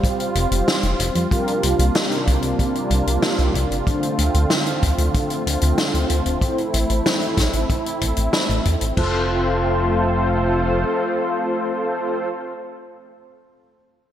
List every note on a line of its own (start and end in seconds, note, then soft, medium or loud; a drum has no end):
0.00 1.29 G3 medium
0.00 1.27 C4 medium
0.00 6.38 F4 medium
0.00 0.48 G4 medium
0.00 0.48 C5 medium
0.00 0.48 F5 loud
0.00 kick loud
0.04 closed hi-hat medium
0.20 closed hi-hat soft
0.35 0.47 F1 medium
0.35 closed hi-hat medium
0.51 0.63 F1 medium
0.51 1.27 G4 medium
0.51 1.27 C5 medium
0.51 1.27 F5 medium
0.51 closed hi-hat medium
0.68 snare loud
0.68 closed hi-hat medium
0.83 0.95 F1 medium
0.83 closed hi-hat soft
0.99 1.11 F1 medium
0.99 closed hi-hat loud
1.15 1.27 F2 medium
1.15 closed hi-hat medium
1.31 3.84 C3 medium
1.31 3.84 G3 medium
1.31 3.84 A#3 medium
1.31 3.03 C4 medium
1.31 3.84 D4 medium
1.31 3.03 F4 medium
1.31 3.03 G4 medium
1.31 3.03 A#4 medium
1.31 3.03 F5 loud
1.31 kick loud
1.31 closed hi-hat medium
1.48 closed hi-hat soft
1.63 1.74 C2 medium
1.63 closed hi-hat loud
1.79 1.90 C2 medium
1.79 closed hi-hat medium
1.95 snare loud
1.95 closed hi-hat medium
2.12 closed hi-hat soft
2.27 2.39 C2 medium
2.27 kick medium
2.27 closed hi-hat medium
2.42 2.54 C2 medium
2.42 closed hi-hat medium
2.59 kick loud
2.59 closed hi-hat medium
2.75 closed hi-hat soft
2.90 3.02 C2 medium
2.90 kick medium
2.90 closed hi-hat medium
3.07 3.18 C2 medium
3.07 3.83 C4 medium
3.07 3.83 F4 medium
3.07 3.83 G4 medium
3.07 3.83 A#4 medium
3.07 3.83 F5 medium
3.07 closed hi-hat medium
3.22 snare loud
3.22 closed hi-hat medium
3.39 3.50 C2 medium
3.39 closed hi-hat soft
3.54 3.66 C2 medium
3.54 kick medium
3.54 closed hi-hat medium
3.71 3.82 G1 medium
3.71 closed hi-hat medium
3.87 6.39 D3 medium
3.87 8.93 A3 medium
3.87 8.93 C4 medium
3.87 5.58 D4 medium
3.87 5.58 F4 medium
3.87 5.58 A4 medium
3.87 5.58 C5 medium
3.87 5.58 F5 loud
3.87 kick loud
3.87 closed hi-hat medium
4.03 closed hi-hat soft
4.18 4.30 D2 medium
4.18 closed hi-hat medium
4.34 4.46 D2 medium
4.34 closed hi-hat medium
4.50 snare loud
4.50 closed hi-hat medium
4.66 closed hi-hat soft
4.83 4.94 D2 medium
4.83 kick medium
4.83 closed hi-hat medium
4.98 5.09 D2 medium
4.98 closed hi-hat medium
5.14 kick loud
5.14 closed hi-hat medium
5.30 closed hi-hat soft
5.46 5.57 D2 medium
5.46 closed hi-hat loud
5.61 5.73 D2 medium
5.61 6.38 D4 medium
5.61 6.38 F4 medium
5.61 6.38 A4 medium
5.61 6.38 C5 medium
5.61 6.38 F5 medium
5.61 closed hi-hat medium
5.78 snare medium
5.78 closed hi-hat medium
5.94 6.05 D2 medium
5.94 closed hi-hat soft
6.10 6.21 D2 medium
6.10 closed hi-hat medium
6.26 6.37 D1 medium
6.26 closed hi-hat medium
6.41 8.95 E4 medium
6.41 8.14 E4 medium
6.41 8.14 A4 medium
6.41 8.14 C5 loud
6.41 kick medium
6.41 closed hi-hat medium
6.58 closed hi-hat soft
6.74 6.85 A1 medium
6.74 closed hi-hat medium
6.90 7.01 A1 medium
6.90 closed hi-hat medium
7.06 snare loud
7.06 closed hi-hat medium
7.21 closed hi-hat soft
7.37 7.49 A1 medium
7.37 kick loud
7.37 snare medium
7.37 closed hi-hat loud
7.53 7.65 A1 medium
7.53 closed hi-hat medium
7.70 kick loud
7.70 closed hi-hat medium
7.86 closed hi-hat soft
8.01 8.13 A1 medium
8.01 kick medium
8.01 closed hi-hat loud
8.16 8.29 A1 medium
8.16 8.93 A4 medium
8.16 closed hi-hat medium
8.33 snare loud
8.33 closed hi-hat medium
8.49 8.61 A1 medium
8.49 closed hi-hat soft
8.65 8.77 E2 medium
8.65 kick medium
8.65 closed hi-hat medium
8.81 8.92 A1 medium
8.81 closed hi-hat medium
8.97 10.85 F1 medium
8.97 12.29 A3 medium
8.97 12.29 C4 medium
8.97 12.28 F4 medium
8.97 12.29 F4 medium
8.97 12.28 A4 medium
8.97 12.28 C5 medium
8.97 kick loud
8.97 crash medium